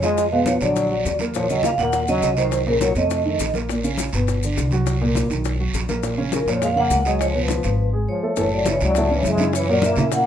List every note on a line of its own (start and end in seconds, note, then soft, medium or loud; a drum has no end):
0.00 0.56 F2 medium
0.00 0.27 F3 medium
0.00 0.30 G#3 medium
0.00 0.27 F4 medium
0.00 0.33 D#5 medium
0.00 high bongo soft
0.00 high conga medium
0.00 short guiro medium
0.00 maracas soft
0.17 high bongo medium
0.17 high conga soft
0.17 long guiro medium
0.17 maracas medium
0.31 0.56 B2 medium
0.31 0.45 G#3 medium
0.31 0.57 B3 medium
0.31 0.47 F5 medium
0.31 high bongo soft
0.31 high conga soft
0.46 0.60 F3 medium
0.46 0.60 C#5 medium
0.46 high bongo medium
0.46 high conga medium
0.46 short guiro medium
0.46 maracas medium
0.61 1.02 A#1 medium
0.61 0.86 D3 medium
0.61 1.16 F#3 medium
0.61 0.86 D4 medium
0.61 1.16 D5 medium
0.61 high bongo soft
0.61 high conga soft
0.61 short guiro medium
0.61 maracas soft
0.75 high bongo medium
0.75 high conga soft
0.75 long guiro medium
0.75 maracas medium
0.90 1.15 F#3 medium
0.90 1.15 F#4 medium
0.90 high conga soft
1.05 1.73 D#2 medium
1.05 high bongo soft
1.05 low bongo medium
1.05 high conga soft
1.05 short guiro medium
1.05 maracas medium
1.19 1.32 A#3 medium
1.19 1.32 A#4 medium
1.19 high bongo soft
1.19 high conga medium
1.19 short guiro medium
1.19 maracas soft
1.34 1.47 A#2 medium
1.34 1.48 F3 medium
1.34 1.48 A#3 medium
1.34 1.49 C#5 medium
1.34 high bongo medium
1.34 high conga soft
1.34 long guiro medium
1.34 maracas medium
1.48 1.74 C#3 medium
1.48 1.63 F#3 medium
1.48 1.74 C#4 medium
1.48 1.65 D#5 loud
1.48 high bongo soft
1.48 high conga soft
1.48 maracas medium
1.63 1.71 A#3 medium
1.63 1.71 F5 medium
1.63 high bongo medium
1.63 high conga medium
1.63 short guiro medium
1.63 maracas medium
1.78 2.19 D#2 medium
1.78 2.03 A#2 medium
1.78 2.03 A#3 medium
1.78 2.07 A#3 medium
1.78 2.06 F#5 loud
1.78 high bongo soft
1.78 high conga soft
1.78 short guiro medium
1.78 maracas soft
1.93 high bongo medium
1.93 high conga soft
1.93 long guiro medium
1.93 maracas medium
2.07 2.32 C#3 medium
2.07 2.35 F#3 medium
2.07 2.32 C#4 medium
2.07 2.39 D#5 loud
2.07 high conga soft
2.07 maracas medium
2.21 2.90 C2 medium
2.21 high bongo soft
2.21 low bongo medium
2.21 high conga soft
2.21 short guiro medium
2.21 maracas medium
2.37 2.65 D#3 medium
2.37 2.61 F#3 medium
2.37 2.62 F#4 medium
2.37 2.65 C5 medium
2.37 high bongo soft
2.37 short guiro medium
2.37 maracas soft
2.51 high bongo medium
2.51 high conga soft
2.51 long guiro medium
2.51 maracas medium
2.66 2.91 A#2 medium
2.66 2.81 C#3 medium
2.66 2.91 A#3 medium
2.66 2.81 A#4 medium
2.66 high bongo soft
2.66 high conga soft
2.81 2.95 F#3 medium
2.81 2.97 C#5 medium
2.81 high bongo medium
2.81 high conga medium
2.81 short guiro medium
2.81 maracas medium
2.95 3.36 F2 medium
2.95 3.20 C3 medium
2.95 3.51 A3 medium
2.95 3.20 C4 medium
2.95 3.51 D#5 medium
2.95 high bongo soft
2.95 high conga soft
2.95 short guiro medium
2.95 maracas soft
3.10 high bongo medium
3.10 high conga soft
3.10 long guiro medium
3.10 maracas medium
3.25 3.49 D#3 medium
3.25 3.50 D#4 medium
3.25 high conga soft
3.39 4.07 A#1 medium
3.39 high bongo soft
3.39 low bongo medium
3.39 high conga soft
3.39 short guiro medium
3.39 maracas medium
3.54 3.67 A#3 medium
3.54 3.67 A#4 medium
3.54 high bongo soft
3.54 high conga medium
3.54 short guiro medium
3.54 maracas soft
3.68 3.82 A#2 medium
3.68 3.82 A#3 medium
3.68 high bongo medium
3.68 high conga soft
3.68 long guiro medium
3.68 maracas medium
3.83 4.08 C#3 medium
3.83 4.08 C#4 medium
3.83 high bongo soft
3.83 high conga soft
3.83 maracas medium
3.98 high bongo soft
3.98 high conga medium
3.98 short guiro medium
3.98 maracas medium
4.13 4.54 G1 medium
4.13 4.38 B2 medium
4.13 4.38 B3 medium
4.13 high bongo soft
4.13 high conga soft
4.13 short guiro medium
4.13 maracas soft
4.27 high bongo medium
4.27 high conga soft
4.27 long guiro medium
4.27 maracas medium
4.42 4.67 D3 medium
4.42 4.68 D4 medium
4.42 high conga soft
4.42 maracas medium
4.56 5.25 C2 medium
4.56 high bongo soft
4.56 low bongo medium
4.56 high conga soft
4.56 short guiro medium
4.56 maracas medium
4.71 4.96 F#3 medium
4.71 4.96 F#4 medium
4.71 high bongo soft
4.71 high conga medium
4.71 short guiro medium
4.71 maracas soft
4.86 high bongo medium
4.86 high conga soft
4.86 long guiro medium
4.86 maracas medium
5.01 5.25 A#2 medium
5.01 5.25 A#3 medium
5.01 high bongo soft
5.01 high conga soft
5.15 high bongo medium
5.15 high conga medium
5.15 short guiro medium
5.15 maracas medium
5.30 5.71 B1 medium
5.30 5.54 D#3 medium
5.30 5.55 D#4 medium
5.30 high bongo soft
5.30 short guiro medium
5.30 maracas soft
5.44 high bongo medium
5.44 high conga soft
5.44 long guiro medium
5.44 maracas medium
5.60 5.84 F#3 medium
5.60 5.84 F#4 medium
5.60 high conga soft
5.73 6.41 A#1 medium
5.73 high bongo soft
5.73 low bongo medium
5.73 high conga soft
5.73 short guiro medium
5.73 maracas medium
5.89 6.01 A#3 medium
5.89 6.01 A#4 medium
5.89 high bongo soft
5.89 high conga medium
5.89 short guiro medium
5.89 maracas soft
6.03 6.15 A#2 medium
6.03 6.15 A#3 medium
6.03 high bongo medium
6.03 high conga soft
6.03 long guiro medium
6.03 maracas medium
6.18 6.42 C#3 medium
6.18 6.42 C#4 medium
6.18 high bongo soft
6.18 high conga soft
6.32 6.39 C#3 medium
6.32 6.40 A#4 medium
6.32 high bongo soft
6.32 high conga medium
6.32 short guiro medium
6.32 maracas medium
6.46 6.87 F2 medium
6.46 6.71 A#2 medium
6.46 6.61 F3 medium
6.46 6.72 A#3 medium
6.46 6.63 C#5 medium
6.46 high bongo soft
6.46 high conga soft
6.46 short guiro medium
6.46 maracas soft
6.62 6.69 G#3 medium
6.62 6.69 F5 loud
6.62 high bongo medium
6.62 high conga soft
6.62 long guiro medium
6.62 maracas medium
6.76 7.00 C#3 medium
6.76 7.03 A#3 medium
6.76 7.00 C#4 medium
6.76 7.04 F#5 medium
6.76 high conga soft
6.90 7.58 C#2 medium
6.90 high bongo soft
6.90 low bongo medium
6.90 high conga soft
6.90 short guiro medium
6.90 maracas medium
7.05 7.19 F#3 medium
7.05 7.30 G#3 medium
7.05 7.30 G#4 medium
7.05 7.21 D#5 medium
7.05 high bongo soft
7.05 short guiro medium
7.05 maracas soft
7.19 7.34 F3 medium
7.19 7.34 C#5 medium
7.19 high bongo medium
7.19 high conga soft
7.19 long guiro medium
7.19 maracas medium
7.34 7.59 B2 medium
7.34 7.90 F3 medium
7.34 7.59 B3 medium
7.34 7.90 B4 medium
7.34 high bongo soft
7.34 high conga soft
7.48 high bongo medium
7.48 high conga medium
7.48 short guiro medium
7.48 maracas medium
7.63 8.05 G#1 medium
7.63 7.88 F3 medium
7.63 7.88 F4 medium
7.63 high bongo soft
7.63 high conga soft
7.63 short guiro medium
7.63 maracas soft
7.93 8.17 G#3 medium
7.93 8.17 G#4 medium
8.08 8.35 F3 medium
8.08 8.38 C#5 medium
8.23 8.35 A3 medium
8.23 8.35 A4 medium
8.36 8.78 F#1 medium
8.36 8.61 A2 medium
8.36 8.51 E3 medium
8.36 8.62 A3 medium
8.36 8.62 A4 medium
8.36 8.53 C#5 medium
8.36 high bongo medium
8.36 high conga soft
8.36 long guiro medium
8.36 maracas medium
8.51 8.66 F#3 medium
8.51 8.68 D5 medium
8.51 high bongo soft
8.51 high conga soft
8.66 8.91 C#3 medium
8.66 8.81 E3 medium
8.66 8.91 C#4 medium
8.66 8.91 E4 medium
8.66 8.81 C#5 medium
8.66 high bongo medium
8.66 high conga medium
8.66 short guiro medium
8.66 maracas medium
8.80 9.21 C#2 medium
8.80 9.08 F#3 medium
8.80 9.12 D5 medium
8.80 high conga soft
8.80 short guiro medium
8.80 maracas soft
8.95 9.08 A2 medium
8.95 9.08 A3 medium
8.95 9.09 A4 medium
8.95 high bongo medium
8.95 high conga soft
8.95 long guiro medium
8.95 maracas medium
9.09 9.34 C#3 medium
9.09 9.24 E3 medium
9.09 9.34 C#4 medium
9.09 9.35 E4 medium
9.09 9.26 C#5 medium
9.09 high bongo soft
9.09 high conga soft
9.23 9.92 F#2 medium
9.23 9.52 G#3 medium
9.23 high bongo soft
9.23 low bongo medium
9.23 high conga medium
9.23 short guiro medium
9.23 maracas medium
9.28 9.56 E5 medium
9.38 9.63 C#3 medium
9.38 9.64 C#4 medium
9.38 9.64 E4 medium
9.38 high bongo soft
9.38 high conga medium
9.38 short guiro medium
9.38 maracas soft
9.53 9.68 E3 medium
9.53 9.70 C#5 medium
9.53 high bongo medium
9.53 high conga soft
9.53 long guiro medium
9.53 maracas medium
9.68 9.93 A#2 medium
9.68 9.83 F#3 medium
9.68 9.93 A#3 medium
9.68 9.93 A#4 medium
9.68 9.83 D5 medium
9.68 high conga soft
9.82 10.11 A#3 medium
9.82 10.11 E5 medium
9.82 high bongo medium
9.82 high conga medium
9.82 short guiro medium
9.82 maracas medium
9.96 10.26 A#2 medium
9.96 10.21 C#3 medium
9.96 10.22 C#4 medium
9.96 10.22 E4 medium
9.96 high conga soft
9.96 low conga medium
9.96 short guiro medium
9.96 maracas soft
10.11 10.26 A#3 medium
10.11 10.26 F#5 loud
10.11 high bongo medium
10.11 high conga soft
10.11 long guiro medium
10.11 maracas medium